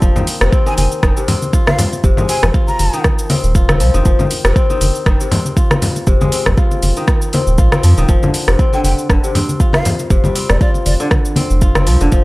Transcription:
Already playing: kora A#3 C4 D4
0.02 sub bass F1, kora F3, kick, shaker
0.16 kora D#3, muted conga, high conga, low conga, shaker
0.27 open hi-hat, shaker
0.41 sub bass F1, kora C3, cross-stick, muted conga, shaker
0.52 kora C4, kick, shaker
0.66 kora D#3, flute G#5, muted conga, shaker
0.77 sub bass F1, flute G#5, open hi-hat, high conga, shaker
0.92 shaker
1.03 sub bass F1, kora D#3, kick, cross-stick, muted conga, shaker
1.17 kora C3, shaker
1.28 kora C4, open hi-hat, muted conga, low conga, shaker
1.42 high conga, shaker
1.53 kora F4, kick, muted conga, shaker
1.67 flute F5, cross-stick, high conga, shaker
1.78 open hi-hat, low conga, shaker
1.92 muted conga, shaker
2.04 sub bass F1, kora C3, kick, shaker
2.17 kora G#3, muted conga, high conga, low conga, shaker
2.29 kora C4, flute G#5, open hi-hat, shaker
2.43 sub bass F1, cross-stick, muted conga, low conga, shaker
2.54 kora F4, kick, shaker
2.67 flute A#5, muted conga, shaker
2.79 sub bass F1, open hi-hat, high conga, shaker
2.93 kora D#3, shaker
3.04 kick, cross-stick, muted conga, high conga, shaker
3.19 shaker
3.30 kora C4, open hi-hat, muted conga, high conga, shaker
3.44 sub bass D#1, shaker
3.55 kora F4, kick, muted conga, shaker
3.69 kora C4, cross-stick, high conga, shaker
3.80 sub bass C2, kora F3, open hi-hat, shaker
3.94 sub bass F1, kora D#3, muted conga, high conga, shaker
4.05 sub bass F1, kora F3, kick, shaker
4.19 kora D#3, muted conga, high conga, low conga, shaker
4.31 open hi-hat, shaker
4.44 sub bass F1, kora C3, cross-stick, muted conga, shaker
4.56 kora C4, kick, shaker
4.70 kora D#3, muted conga, shaker
4.81 sub bass F1, open hi-hat, high conga, shaker
4.95 shaker
5.06 sub bass F1, kora D#3, kick, cross-stick, muted conga, shaker
5.20 kora C3, shaker
5.31 kora C4, open hi-hat, muted conga, low conga, shaker
5.45 high conga, shaker
5.57 kora F4, kick, muted conga, shaker
5.71 cross-stick, high conga, shaker
5.82 open hi-hat, low conga, shaker
5.96 muted conga, shaker
6.07 sub bass F1, kora C3, kick, shaker
6.21 kora G#3, muted conga, high conga, low conga, shaker
6.32 kora C4, open hi-hat, shaker
6.46 sub bass F1, kick, cross-stick, muted conga, low conga, shaker
6.57 kora F4, kick, shaker
6.71 muted conga, shaker
6.83 sub bass F1, open hi-hat, high conga, shaker
6.97 kora D#3, shaker
7.08 kick, cross-stick, muted conga, high conga, shaker
7.22 shaker
7.33 kora C4, open hi-hat, muted conga, high conga, shaker
7.47 sub bass D#1, shaker
7.58 sub bass A#1, kora F4, kick, muted conga, shaker
7.72 kora C4, cross-stick, high conga, shaker
7.83 sub bass F2, kora F3, open hi-hat, shaker
7.97 sub bass D#1, kora D#3, muted conga, high conga, shaker
8.09 sub bass F1, kora F3, kick, shaker
8.23 kora D3, muted conga, high conga, low conga, shaker
8.34 open hi-hat, shaker
8.48 sub bass F1, kora C3, cross-stick, muted conga, shaker
8.59 kora C4, kick, shaker
8.73 kora D3, flute G5, muted conga, shaker
8.84 sub bass F1, flute G5, open hi-hat, high conga, shaker
8.99 shaker
9.09 sub bass F1, kora D3, kick, cross-stick, muted conga, shaker
9.24 kora C3, shaker
9.35 kora C4, open hi-hat, muted conga, low conga, shaker
9.49 high conga, shaker
9.60 kora F4, kick, shaker
9.73 flute F5, cross-stick, high conga, shaker
9.85 open hi-hat, low conga, shaker
9.99 muted conga, shaker
10.10 sub bass F1, kora C3, kick, shaker
10.24 kora G3, muted conga, high conga, low conga, shaker
10.36 kora C4, open hi-hat, shaker
10.49 sub bass F1, flute D5, cross-stick, muted conga, low conga, shaker
10.61 kora F4, flute D5, kick, shaker
10.74 muted conga, shaker
10.86 sub bass F1, flute D5, open hi-hat, high conga, shaker
11.00 kora D3, flute D5, shaker
11.11 kick, cross-stick, muted conga, high conga, shaker
11.25 shaker
11.36 kora C4, open hi-hat, muted conga, high conga, shaker
11.50 sub bass F1, shaker
11.61 kora F4, kick, muted conga, shaker
11.75 kora C4, cross-stick, high conga, shaker
11.87 sub bass C2, kora F3, open hi-hat, shaker
12.01 sub bass F1, kora D3, muted conga, high conga, shaker
12.12 sub bass F1, kora F3, kick, shaker

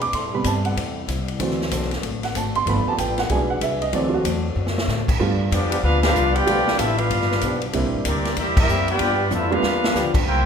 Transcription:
Already playing: upright bass B2
0.01 upright piano D6, ride
0.12 steel-string acoustic guitar A2 G3 C4 E4, upright bass A2, trombone section G3 E4 A4, upright piano C6, kick, ride
0.33 upright piano C3 G3 B3 B5
0.44 upright bass G2, steel-string acoustic guitar A2 G3 C4 E4, upright piano A5, kick, hi-hat pedal, ride
0.65 upright piano F#5, ride
0.75 upright bass E2, steel-string acoustic guitar A2 G3 C4 E4, kick, ride
1.06 upright bass C2, steel-string acoustic guitar A2 G3 C4 E4, kick, hi-hat pedal, ride
1.28 ride
1.38 upright bass D2, steel-string acoustic guitar D3 A3 C4 F#4, upright piano E3 F#3 C4, kick, ride
1.50 snare
1.61 snare
1.70 upright bass B1, steel-string acoustic guitar D3 A3 C4 F#4, trombone section F#3 C4 D4 A4, kick, hi-hat pedal, ride
1.82 snare
1.91 snare, ride
2.02 upright bass A1, steel-string acoustic guitar D3 A3 C4 F#4, kick, ride
2.23 upright piano F#5, snare, ride
2.34 upright bass G#1, steel-string acoustic guitar D3 A3 C4 F#4, upright piano A5, kick, hi-hat pedal, ride
2.55 upright piano C6, ride
2.65 upright bass G1, upright piano F3 A3 B3, steel-string acoustic guitar G3 D4 F4 B4, kick, ride
2.69 upright piano B5
2.86 trombone section F3 B3 D4 G4, upright piano A5, muted upright bass stroke
2.97 upright bass A1, steel-string acoustic guitar G3 D4 F4 B4, upright piano G5, kick, hi-hat pedal, ride
3.18 upright piano F#5, snare, ride
3.28 upright bass B1, steel-string acoustic guitar E3 D4 G#4 B4, trombone section E3 B3 D4 G#4, upright piano F#3 G#3 D4 G#5, kick, ride
3.50 upright piano F#5
3.60 upright bass C2, steel-string acoustic guitar E3 D4 G#4 B4, upright piano E5, kick, hi-hat pedal, ride
3.82 upright piano D#5, ride
3.91 upright bass D2, steel-string acoustic guitar D3 A3 C4 F#4, upright piano E3 F#3 C4 D5, trombone section F#3 C4 D4 A4, kick, ride
4.09 upright piano F4
4.14 upright piano F#4
4.24 upright bass E2, steel-string acoustic guitar D3 A3 C4 F#4, kick, hi-hat pedal, ride
4.56 upright bass F#2, steel-string acoustic guitar D3 A3 C4 F#4
4.67 snare
4.78 snare
4.88 upright bass A2, steel-string acoustic guitar D3 A3 C4 F#4, snare, hi-hat pedal
5.08 kick, crash
5.19 steel-string acoustic guitar G2 F3 B3 D4, upright bass G2, upright piano G3 A3 B3 D4 F4, kick
5.51 upright bass F2, steel-string acoustic guitar G2 F3 B3 D4, trombone section F3 B3 D4, trumpet section B3 F4 G4 D5, kick, hi-hat pedal, ride
5.69 trombone section F3 B3 D4 G4, ride
5.82 upright bass D2, steel-string acoustic guitar G2 F3 B3 D4, trombone section B3 D4 F4, trumpet section D4 G4 B4 F5, kick
6.02 trombone section F3 B3 D4 F4 G4, trumpet section D4 G4 B4 F5, snare, ride
6.15 upright bass C2, steel-string acoustic guitar G2 F3 B3 D4, hi-hat pedal
6.34 trombone section B3 D4 G4, trumpet section F4 B4 D5 G5, ride
6.45 upright bass B1, steel-string acoustic guitar G2 F3 B3, trombone section F3 B3 D4 G4, upright piano G3 A3 B3 D4 F4, kick, ride
6.50 steel-string acoustic guitar D4
6.67 snare
6.77 upright bass A1, steel-string acoustic guitar G2 F3 B3 D4, trumpet section C4 F4 A4 E5, trombone section E4, kick, hi-hat pedal, ride
6.98 trombone section B3 D4 F4, trumpet section D4 G4 B4 F5, ride
7.10 upright bass G1, steel-string acoustic guitar G2 F3 B3 D4, kick, ride
7.21 snare
7.31 snare
7.41 upright bass B1, steel-string acoustic guitar G2 F3 B3 D4, trombone section F3 B3 D4 G4, kick, hi-hat pedal, ride
7.62 ride
7.73 upright bass C2, steel-string acoustic guitar C3 G3 A#3, upright piano G3 A#3 C4 D4 E4, kick, ride
7.77 steel-string acoustic guitar E4
7.84 upright bass A#1
7.95 upright bass G1
8.05 upright bass D2, steel-string acoustic guitar C3 G3 A#3 E4, trombone section G3 A#3 D4, trumpet section C4 G4 A#4 D5, kick, hi-hat pedal, ride
8.25 snare, ride
8.36 upright bass E2, steel-string acoustic guitar C3 G3 A#3 E4, trombone section G3 A#3 E4, trumpet section C4 G4 A#4 E5, kick, ride
8.57 trombone section G3 A#3 E4, trumpet section C4 G4 A#4 E5, kick, crash
8.67 upright bass F#2, steel-string acoustic guitar C3 G3 A#3 E4, trombone section E3 A#3 C4 G4, hi-hat pedal
8.88 trombone section B3 D4 G4, trumpet section F4 B4 D5 G5, ride
8.98 steel-string acoustic guitar G2 F3 B3 D4, upright bass G2, trombone section F3 B3 D4 G4, kick, ride
9.30 upright bass F2, steel-string acoustic guitar G2 F3 B3 D4, trumpet section C4 F4 A4 E5, trombone section E4, hi-hat pedal, high tom
9.51 upright piano G3 A3 B3 D4 F4, trombone section B3 D4 F4, trumpet section D4 G4 B4 F5, high tom
9.62 upright bass E2, steel-string acoustic guitar G2 F3 B3 D4, snare
9.84 snare
9.93 upright bass D2, steel-string acoustic guitar G2 F3 B3 D4, trombone section F3 B3 D4 G4, snare, hi-hat pedal
10.14 kick, crash
10.25 upright bass C2, steel-string acoustic guitar C3 G3 A#3 E4, trombone section A#3 E4 G4, trumpet section E4 A#4 C5 G5, kick

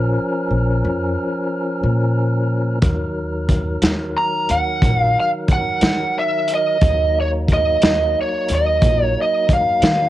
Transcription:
Already playing: upright bass A#1, tonewheel organ F3 C#4 A#4
0.51 upright bass A#1
0.85 upright bass F2
1.84 upright bass A#2
2.82 upright bass D#2, tonewheel organ D#3 F#3 A#4, kick, closed hi-hat
3.49 kick, closed hi-hat
3.82 upright bass D#2, snare, closed hi-hat
4.18 lead electric guitar A#5
4.49 upright bass D#2, lead electric guitar F#5, closed hi-hat
4.82 upright bass A#1, kick, closed hi-hat
4.99 lead electric guitar F5
5.20 lead electric guitar F5
5.48 kick, closed hi-hat
5.53 lead electric guitar F#5
5.81 upright bass D#3, snare, closed hi-hat
6.19 lead electric guitar E5
6.48 closed hi-hat
6.54 lead electric guitar D#5
6.81 upright bass D#2, tonewheel organ F#3 A#3 D#4, kick, closed hi-hat
7.20 lead electric guitar C#5
7.48 kick, closed hi-hat
7.53 lead electric guitar D#5
7.82 upright bass D#2, snare, closed hi-hat
8.21 lead electric guitar C#5
8.48 upright bass D#2, closed hi-hat
8.55 lead electric guitar D#5
8.82 upright bass A#1, kick, closed hi-hat
9.05 lead electric guitar C#5
9.22 lead electric guitar D#5
9.49 kick, closed hi-hat
9.53 lead electric guitar F5
9.82 upright bass D#3, snare, closed hi-hat

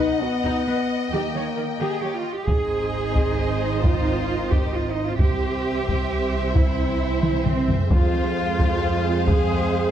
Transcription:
Already playing: french horn section D#4, violin section D#5 F#5
0.21 cello section B2, french horn section B3, viola section F#4
0.43 cello section B2, viola section D#4, taiko
0.67 cello section B2, viola section B4
1.12 double bass section D#2, cello section D#3, french horn section A#3, viola section G4, violin section G5
1.35 cello section D#3, viola section C#5
1.57 cello section D#3, viola section A#4
1.80 cello section D#3 G#4, viola section G4
2.02 cello section D#3 G4, viola section C#5
2.18 cello section F4
2.33 cello section G4
2.46 double bass section G#1, french horn section D#3 C4, viola section D#4, cello section G#4, violin section C5 D#5, taiko
3.15 taiko
3.83 cello section F4, taiko
4.52 cello section G4, taiko
4.75 cello section F4
4.91 cello section D#4
5.07 cello section F4
5.20 double bass section C2, french horn section E3 C4, viola section C4, cello section G4, violin section C5 E5, taiko
5.88 taiko
6.55 cello section E4, taiko
7.23 taiko mid
7.46 cello section C4, taiko mid
7.69 taiko low
7.90 double bass section F2, french horn section G#3 C4, viola section G#3, cello section F4, violin section C5 F5, taiko
8.59 taiko
9.27 cello section G#4, taiko

